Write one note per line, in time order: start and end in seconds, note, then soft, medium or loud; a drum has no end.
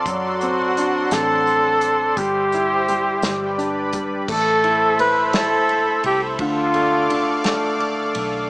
0.00 2.13 A4 medium
0.00 2.13 D5 medium
0.00 3.18 C6 medium
0.06 1.08 F#2 medium
0.06 2.14 F#3 medium
0.06 1.14 F#4 medium
0.06 2.15 F#5 medium
0.06 kick loud
0.06 closed hi-hat medium
0.41 1.11 C4 soft
0.41 closed hi-hat medium
0.77 2.14 D4 soft
0.77 closed hi-hat medium
1.11 2.13 A1 medium
1.11 2.14 C4 soft
1.11 2.19 A4 loud
1.11 snare loud
1.11 closed hi-hat medium
1.47 closed hi-hat soft
1.81 closed hi-hat medium
2.17 3.19 G1 loud
2.17 2.87 G3 medium
2.17 4.26 G4 medium
2.17 3.93 G4 medium
2.17 3.22 C5 medium
2.17 3.22 E5 medium
2.17 kick loud
2.17 closed hi-hat medium
2.52 3.22 E4 medium
2.52 closed hi-hat medium
2.88 3.22 G3 medium
2.88 closed hi-hat medium
3.22 4.24 G1 loud
3.22 3.92 G3 medium
3.22 4.28 B4 medium
3.22 4.28 D5 medium
3.22 4.27 B5 medium
3.22 snare loud
3.22 closed hi-hat medium
3.58 4.26 D4 medium
3.58 closed hi-hat soft
3.93 4.28 G3 medium
3.93 kick medium
3.93 closed hi-hat medium
4.28 6.00 A1 loud
4.28 4.97 A3 medium
4.28 8.47 A4 medium
4.28 4.97 A4 loud
4.28 6.38 C5 medium
4.28 6.38 E5 medium
4.28 6.38 B5 medium
4.28 kick loud
4.28 crash loud
4.64 5.32 E4 medium
4.64 ride soft
4.99 6.35 A3 medium
4.99 5.26 B4 loud
4.99 ride medium
5.26 5.37 B4 medium
5.33 6.36 E4 medium
5.33 6.05 A4 loud
5.33 snare loud
5.33 ride medium
5.69 ride soft
6.04 6.37 C2 medium
6.04 6.21 G4 medium
6.04 ride medium
6.39 8.11 D2 loud
6.39 7.08 D3 medium
6.39 7.77 F4 medium
6.39 8.49 D5 medium
6.39 8.48 F5 medium
6.39 8.49 D6 medium
6.39 kick loud
6.39 ride medium
6.74 7.43 A3 medium
6.74 ride soft
7.09 8.46 D3 medium
7.09 ride medium
7.44 8.47 A3 medium
7.44 snare loud
7.44 ride medium
7.80 ride soft
8.15 8.49 B1 loud
8.15 ride medium